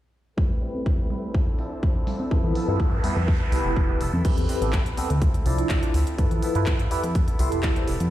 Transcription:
0.37 clean electric guitar G3 C4 E4 B4, string section A3 B4 G5, kick, tambourine, low conga
0.50 clean electric guitar C4 E4 B4
0.61 clean electric guitar G3 C4 E4 B4, open hi-hat, tambourine
0.75 tambourine, high conga
0.86 clean electric guitar G3 C4 E4 B4, kick
1.10 clean electric guitar G3 C4 E4 B4, open hi-hat, tambourine, low conga
1.23 tambourine
1.34 clean electric guitar F3 C4 E4 A4, string section D4 C5 E6, kick
1.47 clean electric guitar C4 E4 A4, tambourine
1.58 clean electric guitar F3 C4 E4 A4, open hi-hat
1.71 clean electric guitar C4 E4 A4, tambourine
1.82 clean electric guitar F3 C4 E4 A4, kick, tambourine
2.07 clean electric guitar F3 C4 E4 A4, open hi-hat, tambourine, low conga
2.19 clean electric guitar C4 E4 A4, tambourine, high conga
2.31 analog synth bass G2, clean electric guitar F3 B3 E4 A4, tine electric piano F3 B3 E4 A4, string section B4 A5 E6, kick, tambourine, noise sweep, low conga
2.44 analog synth bass E3
2.55 clean electric guitar F3 B3 E4 A4, open hi-hat, tambourine
2.68 analog synth bass G2, tine electric piano B3 E4 F4 A4, tambourine, high conga
2.79 clean electric guitar F3 B3 E4 A4, kick
2.92 tambourine
3.04 analog synth bass F2, clean electric guitar G3 B3 E4 A4, tine electric piano B3 E4 G4 A4, string section G5, open hi-hat, tambourine, low conga
3.16 analog synth bass F2, tambourine
3.28 kick
3.40 analog synth bass C2, clean electric guitar B3 E4 A4, tambourine
3.52 analog synth bass C2, clean electric guitar G3 B3 E4 A4, tine electric piano B3 E4 G4 B4, open hi-hat, tambourine
3.65 analog synth bass F1, clean electric guitar B3 E4 A4
3.76 clean electric guitar G3 B3 E4 A4, kick, tambourine
3.89 tine electric piano B3 E4 G4 B4
4.00 analog synth bass F1, clean electric guitar G3 B3 E4 A4, open hi-hat, tambourine
4.13 analog synth bass F2, clean electric guitar B3 E4 A4, tambourine, high conga
4.25 analog synth bass A1, clean electric guitar G3 C4 E4 B4, tine electric piano C4 G4 A4 B4, kick, closed hi-hat, crash
4.37 analog synth bass E2, clean electric guitar C4 E4 B4, closed hi-hat
4.48 clean electric guitar G3 C4 E4 B4, open hi-hat
4.61 analog synth bass A1, tine electric piano B3 C4 G4 A4, closed hi-hat
4.73 clean electric guitar G3 C4 E4, kick, clap, closed hi-hat
4.85 clean electric guitar C4 E4 B4, closed hi-hat
4.97 analog synth bass D2, clean electric guitar G3 C4 E4 B4, tine electric piano B3 C4 G4 A4, open hi-hat
5.09 analog synth bass D2, clean electric guitar C4 E4 B4, closed hi-hat
5.21 clean electric guitar F3 C4 E4 A4, kick, closed hi-hat
5.34 analog synth bass D2, clean electric guitar C4 E4 A4, closed hi-hat
5.45 analog synth bass C2, clean electric guitar F3 C4 E4 A4, tine electric piano F3 D4 E4 D5, open hi-hat
5.58 clean electric guitar C4 E4 A4, closed hi-hat
5.69 analog synth bass C2, clean electric guitar F3 C4 E4 A4, kick, clap, closed hi-hat
5.83 tine electric piano D4 E4 F4 D5, closed hi-hat
5.94 analog synth bass D2, clean electric guitar F3 C4 E4 A4, open hi-hat
6.07 closed hi-hat
6.18 analog synth bass G2, clean electric guitar F3 B3 E4 A4, tine electric piano F3 E4 A4 B4, kick, closed hi-hat
6.31 analog synth bass E3, clean electric guitar B3 E4 A4, closed hi-hat
6.42 clean electric guitar F3 B3 E4 A4, open hi-hat
6.55 analog synth bass G2, tine electric piano E4 F4 A4 B4, closed hi-hat
6.66 clean electric guitar F3 B3 E4 A4, kick, clap, closed hi-hat
6.79 closed hi-hat
6.90 analog synth bass F2, clean electric guitar G3 B3 E4 A4, tine electric piano E4 G4 A4 B4, open hi-hat
7.03 analog synth bass F2, clean electric guitar B3 E4 A4, closed hi-hat
7.15 kick, closed hi-hat
7.27 analog synth bass C2, clean electric guitar B3 E4 A4, closed hi-hat
7.39 analog synth bass C2, clean electric guitar G3 B3 E4 A4, tine electric piano E4 G4 A4 C6, open hi-hat
7.51 analog synth bass F1, clean electric guitar B3 E4 A4, closed hi-hat
7.63 clean electric guitar G3 B3 E4 A4, kick, clap, closed hi-hat
7.76 tine electric piano E4 G4 A4 C5, closed hi-hat
7.87 analog synth bass F1, clean electric guitar G3 B3 E4 A4, open hi-hat
8.00 analog synth bass F2, closed hi-hat

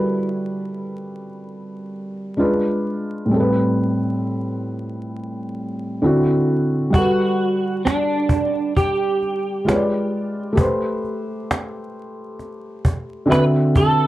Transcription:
Already playing: felt piano G3 F#4 A4 B4
2.37 felt piano G#3 D4 F4 B4
3.25 felt piano A2 G3
3.31 felt piano C4 A4
3.40 felt piano B4
6.02 felt piano D3 C4 E4 F#4
6.90 felt piano G3 F#5, cajon bass
6.95 clean electric guitar F#4, felt piano A4 B4
7.85 clean electric guitar D4, cajon slap
8.29 cajon bass
8.77 clean electric guitar G4, cajon bass
9.22 cajon slap
9.65 felt piano G#3 F4 B4, cajon slap
9.69 felt piano C#5
9.75 felt piano D5
10.53 felt piano A3 G4
10.57 felt piano B4 C5, cajon bass
11.04 cajon slap
11.51 cajon slap
12.39 cajon slap
12.85 cajon bass
13.26 felt piano D3 C4 F#4 E5
13.31 clean electric guitar B4, cajon slap
13.76 clean electric guitar A4, cajon bass

